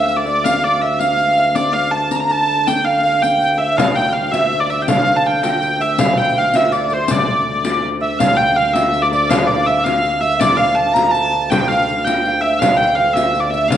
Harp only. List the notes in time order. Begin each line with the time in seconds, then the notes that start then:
Already playing: E5 G5
0.26 D5
0.44 F5
0.63 D5
0.83 E5
1.01 F5
1.37 E5
1.56 D5
1.93 A5
2.12 A#5
2.20 A#5
2.29 A5
2.67 G5
2.85 F5
3.03 F5
3.22 G5
3.59 E5
3.77 F5
3.96 G5
4.32 E5
4.61 D5
4.70 E5
4.88 F5
5.16 A5
5.43 G5
5.80 E5
5.99 F5
6.17 G5
6.36 F5
6.55 E5
6.73 D5
6.91 C5
7.10 D5
8.01 E5
8.19 F5
8.38 G5
8.56 F5
8.76 E5
9.13 D5
9.31 F5
9.43 F5
9.55 F5
9.68 E5
9.84 F5
10.22 E5
10.35 E5
10.41 D5
10.59 F5
10.77 A5
10.97 A#5
11.14 A5
11.32 A5
11.52 G5
11.70 F5
12.07 G5
12.26 F5
12.44 E5
12.61 F5
12.80 G5
12.94 G5
12.98 F5
13.16 E5
13.43 D5
13.53 E5
13.72 F5